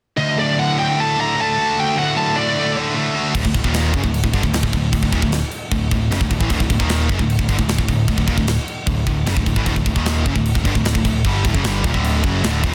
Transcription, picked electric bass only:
3.35 3.44 D1 medium
3.45 3.54 D1 medium
3.54 3.63 D1 medium
3.64 3.92 D#1 loud
3.94 4.03 F#1 medium
4.04 4.22 D1 medium
4.24 4.33 D1 medium
4.34 4.43 G1 medium
4.43 4.52 D1 medium
4.53 4.62 D1 medium
4.63 4.72 D1 medium
4.74 4.91 D1 medium
4.93 5.02 D1 medium
5.03 5.12 D1 medium
5.12 5.21 D#1 loud
5.23 5.41 D1 medium
5.72 5.90 D1 medium
5.92 6.10 D1 medium
6.11 6.20 F#1 loud
6.21 6.30 D1 medium
6.31 6.40 D1 medium
6.41 6.50 A1 loud
6.51 6.60 D1 loud
6.60 6.69 D1 medium
6.70 6.79 D1 medium
6.80 7.07 D#1 loud
7.09 7.19 F#1 loud
7.20 7.38 D1 medium
7.39 7.48 D1 medium
7.49 7.58 G1 medium
7.59 7.68 D1 medium
7.69 7.78 D1 medium
7.78 7.88 D1 medium
7.89 8.07 D1 medium
8.08 8.17 D1 medium
8.18 8.27 D1 medium
8.28 8.37 D#1 loud
8.38 8.56 D1 medium
8.87 9.06 D1 medium
9.07 9.25 D1 medium
9.26 9.36 F#1 loud
9.37 9.46 D1 medium
9.46 9.56 D1 medium
9.57 9.66 A1 loud
9.66 9.76 D1 medium
9.76 9.85 D1 medium
9.86 9.95 D1 medium
9.96 10.24 D#1 medium
10.26 10.35 F#1 medium
10.36 10.54 D1 medium
10.56 10.65 D1 medium
10.65 10.75 G1 medium
10.75 10.84 D1 medium
10.85 10.94 D1 medium
10.95 11.04 D1 medium
11.05 11.23 D1 medium
11.25 11.43 G1 medium
11.45 11.54 D1 loud
11.55 11.64 F#1 loud
11.65 11.83 G1 loud
11.84 11.94 D#1 loud
11.94 12.22 D1 medium
12.24 12.42 F#1 loud
12.43 12.62 D1 loud
12.64 12.73 D#1 medium

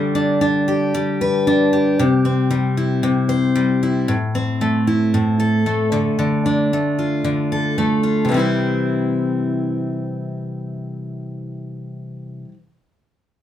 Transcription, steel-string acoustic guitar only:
0.00 2.02 D3 medium
0.00 0.94 G3 medium
0.00 0.15 D4 medium
0.15 0.40 D4 medium
0.41 1.46 D4 medium
0.68 1.72 G4 medium
0.94 2.50 G3 medium
1.21 2.05 B4 medium
1.47 2.05 D4 medium
1.73 2.77 G4 medium
1.99 3.02 C3 medium
2.25 4.15 C4 medium
2.51 3.54 G3 medium
2.77 3.82 E4 medium
3.03 4.08 C3 medium
3.29 4.14 C5 medium
3.55 4.14 G3 medium
3.83 4.15 E4 soft
4.08 5.13 A2 medium
4.35 5.99 C4 medium
4.61 5.66 A3 medium
4.87 5.99 E4 soft
5.14 5.99 A2 medium
5.40 7.52 A4 medium
5.66 6.73 A3 medium
5.92 6.17 D3 medium
6.19 7.23 D3 medium
6.46 8.34 D4 medium
6.73 7.77 A3 medium
6.99 8.02 F4 soft
7.24 8.28 D3 medium
7.52 8.36 A4 medium
7.78 8.31 A3 medium
8.03 8.36 F4 soft
8.25 12.44 C3 medium
8.25 12.48 E3 medium
8.32 12.51 G3 medium
8.32 12.54 C4 medium
8.37 12.56 E4 medium
8.37 12.59 C5 medium

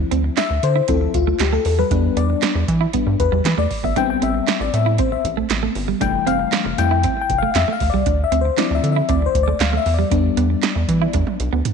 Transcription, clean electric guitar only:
0.11 0.20 C4 medium
0.24 muted clean electric guitar stroke soft
0.37 0.46 D4 medium
0.50 muted clean electric guitar stroke medium
0.76 0.85 E4 medium
0.88 0.97 C4 medium
1.01 muted clean electric guitar stroke soft
1.27 1.36 A3 medium
1.53 1.62 A3 medium
1.66 muted clean electric guitar stroke soft
1.79 1.88 G3 medium
1.92 2.00 D4 medium
2.17 2.26 B3 medium
2.30 muted clean electric guitar stroke soft
2.42 2.51 D4 medium
2.55 muted clean electric guitar stroke soft
2.81 2.90 E4 medium
2.94 3.03 B3 medium
3.07 muted clean electric guitar stroke soft
3.32 3.41 G3 medium
3.58 3.67 A3 medium
3.71 muted clean electric guitar stroke soft
3.84 3.93 B3 medium
3.96 4.05 D4 medium
4.22 4.31 C4 medium
4.34 muted clean electric guitar stroke soft
4.47 4.56 D4 medium
4.60 muted clean electric guitar stroke soft
4.86 4.95 E4 medium
4.99 5.08 C4 medium
5.12 muted clean electric guitar stroke medium
5.37 5.46 A3 medium
5.63 5.72 A3 medium
5.76 muted clean electric guitar stroke soft
5.88 5.97 G3 medium
6.01 6.10 D4 medium
6.27 6.36 C4 medium
6.39 muted clean electric guitar stroke soft
6.52 6.61 D4 medium
6.66 muted clean electric guitar stroke soft
6.91 7.00 E4 medium
7.04 7.13 C4 medium
7.17 muted clean electric guitar stroke soft
7.43 7.51 A3 medium
7.68 7.77 A3 medium
7.80 muted clean electric guitar stroke soft
7.94 8.03 G3 medium
8.07 8.16 D4 medium
8.32 8.41 C4 medium
8.45 muted clean electric guitar stroke soft
8.58 8.67 D4 medium
8.71 muted clean electric guitar stroke soft
8.96 9.05 E4 medium
9.09 9.18 C4 medium
9.22 muted clean electric guitar stroke soft
9.48 9.57 A3 medium
9.73 9.82 A3 medium
9.86 muted clean electric guitar stroke soft
9.99 10.08 G3 medium
10.12 10.21 D4 medium
10.37 10.46 B3 medium
10.50 muted clean electric guitar stroke soft
10.63 10.72 D4 medium
10.76 muted clean electric guitar stroke soft
11.02 11.11 E4 medium
11.14 11.23 D4 medium
11.27 muted clean electric guitar stroke soft
11.53 11.62 B3 medium

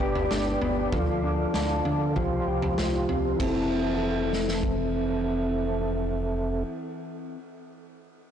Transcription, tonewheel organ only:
0.00 0.89 B4 medium
0.00 2.12 D5 medium
0.00 0.89 G5 medium
0.00 2.12 D6 medium
0.92 2.15 A4 medium
0.92 2.14 F5 medium
2.16 3.38 G4 medium
2.16 3.38 C5 soft
2.16 3.38 F5 soft
2.16 3.38 C6 medium
3.40 6.63 C4 medium
3.40 6.63 A4 soft
3.40 6.63 E5 soft
3.40 6.63 A5 medium

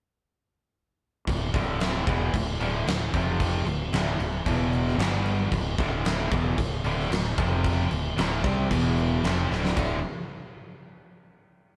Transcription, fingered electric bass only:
1.28 1.52 D1 medium
1.54 2.04 D1 medium
2.07 2.32 E1 loud
2.34 2.58 D1 medium
2.61 2.85 D1 loud
2.87 3.12 D1 medium
3.14 3.63 F1 medium
3.66 3.91 D1 medium
3.92 4.17 D1 medium
4.19 4.44 D1 medium
4.46 4.95 E1 medium
4.98 5.48 G1 loud
5.52 5.77 D1 medium
5.79 6.28 D1 loud
6.31 6.56 E1 loud
6.58 6.83 D1 medium
6.85 7.10 D1 loud
7.11 7.36 D1 medium
7.38 7.87 F1 medium
7.91 8.16 D1 medium
8.17 8.42 D1 loud
8.44 8.69 C2 medium
8.70 9.20 E1 medium
9.24 9.48 F1 loud
9.50 9.75 D1 medium
9.77 10.02 D1 medium

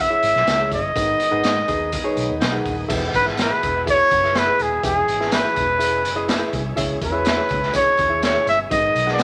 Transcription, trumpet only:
0.00 0.72 E5 loud
0.74 2.63 D#5 medium
3.15 3.26 B4 loud
3.41 3.85 B4 medium
3.90 4.39 C#5 loud
4.38 4.64 B4 loud
4.62 4.84 G#4 medium
4.85 5.35 G#4 loud
5.33 6.54 B4 medium
7.05 7.72 B4 medium
7.76 8.20 C#5 loud
8.24 8.46 C#5 loud
8.49 8.59 E5 loud
8.72 9.10 D#5 loud
9.13 9.23 D5 medium

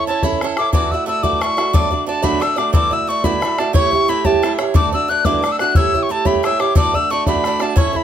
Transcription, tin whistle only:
0.07 0.26 A5 medium
0.24 0.42 B5 medium
0.58 0.72 D6 medium
0.74 0.93 D6 medium
0.91 1.07 E6 medium
1.08 1.24 E6 loud
1.23 1.43 D6 medium
1.42 1.75 C#6 loud
1.74 2.07 D6 medium
2.07 2.25 A5 medium
2.24 2.43 B5 medium
2.42 2.59 E6 loud
2.57 2.73 D6 medium
2.73 2.94 D6 loud
2.93 3.10 E6 medium
3.09 3.26 C#6 loud
3.24 3.60 B5 medium
3.59 3.75 A5 medium
3.75 4.11 C#6 loud
4.09 4.27 B5 loud
4.25 4.53 A5 medium
4.75 4.92 D6 loud
4.94 5.11 E6 medium
5.09 5.27 F#6 loud
5.25 5.53 D6 medium
5.52 5.59 E6 medium
5.60 5.77 F#6 medium
5.76 6.04 E6 loud
6.03 6.13 C#6 medium
6.11 6.28 A5 medium
6.26 6.46 B5 medium
6.45 6.62 E6 loud
6.60 6.76 D6 medium
6.77 6.96 D6 loud
6.95 7.12 E6 loud
7.11 7.27 C#6 medium
7.28 7.63 B5 medium
7.62 7.79 A5 medium
7.77 7.98 C#6 loud
7.96 8.04 B5 medium

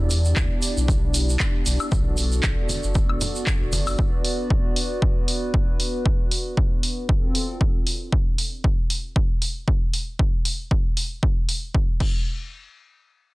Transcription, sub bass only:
0.00 0.33 E2 loud
0.37 0.48 D2 medium
0.77 1.37 B1 medium
1.66 1.78 B1 medium
1.92 2.40 B1 loud
2.43 2.55 A1 medium
2.84 3.18 F#1 medium
3.61 3.96 F#1 medium

